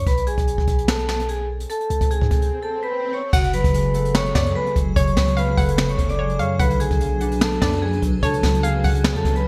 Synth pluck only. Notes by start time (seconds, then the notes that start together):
3.33 F#5
4.35 D5
4.96 C#5
5.37 F5
5.57 F#5
6.19 C#5
6.39 F5
6.59 F#5
7.62 D5
8.23 C#5
8.63 F5
8.84 F#5